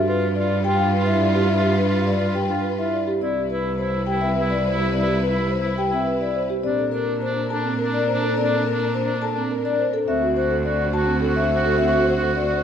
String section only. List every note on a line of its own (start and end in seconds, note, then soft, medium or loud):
0.00 3.03 F4 medium
0.00 3.03 B4 medium
3.21 6.46 E4 medium
3.21 6.46 B4 medium
6.65 9.89 D4 medium
6.65 9.89 A#4 medium
10.07 12.63 F#4 medium
10.07 12.63 C5 medium